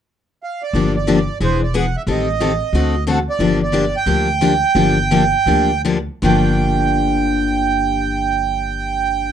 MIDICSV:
0, 0, Header, 1, 4, 480
1, 0, Start_track
1, 0, Key_signature, -2, "minor"
1, 0, Tempo, 332779
1, 1064, Time_signature, 4, 2, 24, 8
1, 5382, Tempo, 344234
1, 7302, Tempo, 373367
1, 8742, Tempo, 392927
1, 12519, End_track
2, 0, Start_track
2, 0, Title_t, "Accordion"
2, 0, Program_c, 0, 21
2, 625, Note_on_c, 0, 77, 72
2, 902, Note_off_c, 0, 77, 0
2, 902, Note_on_c, 0, 74, 85
2, 1336, Note_off_c, 0, 74, 0
2, 1384, Note_on_c, 0, 74, 75
2, 1994, Note_off_c, 0, 74, 0
2, 2074, Note_on_c, 0, 72, 81
2, 2320, Note_off_c, 0, 72, 0
2, 2353, Note_on_c, 0, 74, 71
2, 2529, Note_off_c, 0, 74, 0
2, 2564, Note_on_c, 0, 78, 75
2, 2831, Note_off_c, 0, 78, 0
2, 2843, Note_on_c, 0, 76, 85
2, 2918, Note_off_c, 0, 76, 0
2, 3038, Note_on_c, 0, 75, 79
2, 4392, Note_off_c, 0, 75, 0
2, 4489, Note_on_c, 0, 78, 84
2, 4604, Note_off_c, 0, 78, 0
2, 4754, Note_on_c, 0, 74, 90
2, 5180, Note_off_c, 0, 74, 0
2, 5234, Note_on_c, 0, 74, 86
2, 5698, Note_off_c, 0, 74, 0
2, 5703, Note_on_c, 0, 79, 109
2, 8214, Note_off_c, 0, 79, 0
2, 8764, Note_on_c, 0, 79, 88
2, 12519, Note_off_c, 0, 79, 0
2, 12519, End_track
3, 0, Start_track
3, 0, Title_t, "Steel-string acoustic guitar"
3, 0, Program_c, 1, 25
3, 1076, Note_on_c, 1, 50, 57
3, 1082, Note_on_c, 1, 53, 56
3, 1086, Note_on_c, 1, 58, 59
3, 1090, Note_on_c, 1, 62, 63
3, 1092, Note_on_c, 1, 67, 55
3, 1362, Note_off_c, 1, 50, 0
3, 1365, Note_off_c, 1, 53, 0
3, 1367, Note_off_c, 1, 58, 0
3, 1369, Note_off_c, 1, 62, 0
3, 1370, Note_off_c, 1, 67, 0
3, 1544, Note_on_c, 1, 50, 74
3, 1551, Note_on_c, 1, 53, 74
3, 1557, Note_on_c, 1, 58, 77
3, 1559, Note_on_c, 1, 67, 88
3, 1563, Note_on_c, 1, 62, 84
3, 1700, Note_off_c, 1, 50, 0
3, 1703, Note_off_c, 1, 53, 0
3, 1706, Note_off_c, 1, 58, 0
3, 1707, Note_off_c, 1, 67, 0
3, 1709, Note_off_c, 1, 62, 0
3, 2026, Note_on_c, 1, 52, 65
3, 2033, Note_on_c, 1, 59, 67
3, 2041, Note_on_c, 1, 62, 71
3, 2042, Note_on_c, 1, 68, 70
3, 2317, Note_off_c, 1, 52, 0
3, 2321, Note_off_c, 1, 59, 0
3, 2325, Note_off_c, 1, 62, 0
3, 2325, Note_off_c, 1, 68, 0
3, 2509, Note_on_c, 1, 52, 82
3, 2515, Note_on_c, 1, 62, 82
3, 2516, Note_on_c, 1, 59, 84
3, 2524, Note_on_c, 1, 68, 85
3, 2662, Note_off_c, 1, 52, 0
3, 2665, Note_off_c, 1, 59, 0
3, 2665, Note_off_c, 1, 62, 0
3, 2670, Note_off_c, 1, 68, 0
3, 2986, Note_on_c, 1, 51, 58
3, 2992, Note_on_c, 1, 55, 61
3, 2997, Note_on_c, 1, 60, 62
3, 3002, Note_on_c, 1, 69, 65
3, 3003, Note_on_c, 1, 67, 63
3, 3277, Note_off_c, 1, 51, 0
3, 3280, Note_off_c, 1, 55, 0
3, 3282, Note_off_c, 1, 60, 0
3, 3285, Note_off_c, 1, 67, 0
3, 3285, Note_off_c, 1, 69, 0
3, 3468, Note_on_c, 1, 51, 75
3, 3468, Note_on_c, 1, 55, 83
3, 3477, Note_on_c, 1, 60, 84
3, 3480, Note_on_c, 1, 67, 75
3, 3485, Note_on_c, 1, 69, 85
3, 3621, Note_off_c, 1, 51, 0
3, 3621, Note_off_c, 1, 55, 0
3, 3625, Note_off_c, 1, 60, 0
3, 3627, Note_off_c, 1, 67, 0
3, 3630, Note_off_c, 1, 69, 0
3, 3959, Note_on_c, 1, 50, 64
3, 3964, Note_on_c, 1, 57, 65
3, 3967, Note_on_c, 1, 60, 72
3, 3970, Note_on_c, 1, 66, 65
3, 3977, Note_on_c, 1, 69, 68
3, 4243, Note_off_c, 1, 50, 0
3, 4245, Note_off_c, 1, 57, 0
3, 4247, Note_off_c, 1, 60, 0
3, 4248, Note_off_c, 1, 66, 0
3, 4252, Note_off_c, 1, 69, 0
3, 4425, Note_on_c, 1, 50, 74
3, 4431, Note_on_c, 1, 57, 76
3, 4433, Note_on_c, 1, 60, 76
3, 4441, Note_on_c, 1, 66, 78
3, 4443, Note_on_c, 1, 69, 82
3, 4579, Note_off_c, 1, 50, 0
3, 4582, Note_off_c, 1, 57, 0
3, 4583, Note_off_c, 1, 60, 0
3, 4587, Note_off_c, 1, 66, 0
3, 4588, Note_off_c, 1, 69, 0
3, 4896, Note_on_c, 1, 50, 57
3, 4904, Note_on_c, 1, 53, 61
3, 4905, Note_on_c, 1, 58, 68
3, 4914, Note_on_c, 1, 67, 74
3, 4915, Note_on_c, 1, 62, 63
3, 5191, Note_off_c, 1, 50, 0
3, 5195, Note_off_c, 1, 53, 0
3, 5195, Note_off_c, 1, 58, 0
3, 5200, Note_off_c, 1, 62, 0
3, 5200, Note_off_c, 1, 67, 0
3, 5368, Note_on_c, 1, 50, 70
3, 5380, Note_on_c, 1, 53, 70
3, 5380, Note_on_c, 1, 58, 76
3, 5385, Note_on_c, 1, 62, 90
3, 5392, Note_on_c, 1, 67, 88
3, 5526, Note_off_c, 1, 50, 0
3, 5532, Note_off_c, 1, 53, 0
3, 5532, Note_off_c, 1, 58, 0
3, 5534, Note_off_c, 1, 62, 0
3, 5538, Note_off_c, 1, 67, 0
3, 5845, Note_on_c, 1, 50, 67
3, 5851, Note_on_c, 1, 53, 70
3, 5854, Note_on_c, 1, 58, 64
3, 5860, Note_on_c, 1, 67, 68
3, 5861, Note_on_c, 1, 62, 75
3, 6135, Note_off_c, 1, 50, 0
3, 6138, Note_off_c, 1, 53, 0
3, 6140, Note_off_c, 1, 58, 0
3, 6143, Note_off_c, 1, 67, 0
3, 6144, Note_off_c, 1, 62, 0
3, 6328, Note_on_c, 1, 50, 71
3, 6331, Note_on_c, 1, 53, 83
3, 6340, Note_on_c, 1, 58, 73
3, 6347, Note_on_c, 1, 62, 83
3, 6347, Note_on_c, 1, 67, 82
3, 6482, Note_off_c, 1, 50, 0
3, 6483, Note_off_c, 1, 53, 0
3, 6488, Note_off_c, 1, 58, 0
3, 6491, Note_off_c, 1, 62, 0
3, 6491, Note_off_c, 1, 67, 0
3, 6807, Note_on_c, 1, 53, 60
3, 6808, Note_on_c, 1, 50, 60
3, 6817, Note_on_c, 1, 58, 63
3, 6819, Note_on_c, 1, 62, 65
3, 6819, Note_on_c, 1, 67, 65
3, 7106, Note_off_c, 1, 53, 0
3, 7107, Note_off_c, 1, 50, 0
3, 7111, Note_off_c, 1, 58, 0
3, 7112, Note_off_c, 1, 62, 0
3, 7112, Note_off_c, 1, 67, 0
3, 7303, Note_on_c, 1, 50, 72
3, 7306, Note_on_c, 1, 53, 84
3, 7313, Note_on_c, 1, 58, 84
3, 7314, Note_on_c, 1, 62, 85
3, 7319, Note_on_c, 1, 67, 82
3, 7452, Note_off_c, 1, 50, 0
3, 7453, Note_off_c, 1, 53, 0
3, 7457, Note_off_c, 1, 58, 0
3, 7457, Note_off_c, 1, 62, 0
3, 7460, Note_off_c, 1, 67, 0
3, 7765, Note_on_c, 1, 50, 67
3, 7768, Note_on_c, 1, 53, 65
3, 7776, Note_on_c, 1, 58, 62
3, 7778, Note_on_c, 1, 62, 71
3, 7779, Note_on_c, 1, 67, 65
3, 8056, Note_off_c, 1, 50, 0
3, 8058, Note_off_c, 1, 53, 0
3, 8062, Note_off_c, 1, 58, 0
3, 8063, Note_off_c, 1, 62, 0
3, 8063, Note_off_c, 1, 67, 0
3, 8251, Note_on_c, 1, 50, 80
3, 8251, Note_on_c, 1, 53, 69
3, 8260, Note_on_c, 1, 58, 78
3, 8261, Note_on_c, 1, 67, 94
3, 8262, Note_on_c, 1, 62, 81
3, 8407, Note_off_c, 1, 50, 0
3, 8408, Note_off_c, 1, 53, 0
3, 8412, Note_off_c, 1, 58, 0
3, 8412, Note_off_c, 1, 67, 0
3, 8413, Note_off_c, 1, 62, 0
3, 8731, Note_on_c, 1, 43, 82
3, 8743, Note_on_c, 1, 50, 80
3, 8748, Note_on_c, 1, 53, 80
3, 8760, Note_on_c, 1, 58, 73
3, 8767, Note_on_c, 1, 62, 79
3, 8776, Note_on_c, 1, 67, 72
3, 12519, Note_off_c, 1, 43, 0
3, 12519, Note_off_c, 1, 50, 0
3, 12519, Note_off_c, 1, 53, 0
3, 12519, Note_off_c, 1, 58, 0
3, 12519, Note_off_c, 1, 62, 0
3, 12519, Note_off_c, 1, 67, 0
3, 12519, End_track
4, 0, Start_track
4, 0, Title_t, "Upright bass"
4, 0, Program_c, 2, 32
4, 1058, Note_on_c, 2, 31, 81
4, 1829, Note_off_c, 2, 31, 0
4, 2025, Note_on_c, 2, 28, 76
4, 2793, Note_off_c, 2, 28, 0
4, 2980, Note_on_c, 2, 33, 84
4, 3749, Note_off_c, 2, 33, 0
4, 3934, Note_on_c, 2, 38, 80
4, 4704, Note_off_c, 2, 38, 0
4, 4886, Note_on_c, 2, 31, 75
4, 5655, Note_off_c, 2, 31, 0
4, 5841, Note_on_c, 2, 38, 75
4, 6610, Note_off_c, 2, 38, 0
4, 6801, Note_on_c, 2, 31, 91
4, 7579, Note_off_c, 2, 31, 0
4, 7753, Note_on_c, 2, 38, 72
4, 8538, Note_off_c, 2, 38, 0
4, 8736, Note_on_c, 2, 31, 86
4, 12519, Note_off_c, 2, 31, 0
4, 12519, End_track
0, 0, End_of_file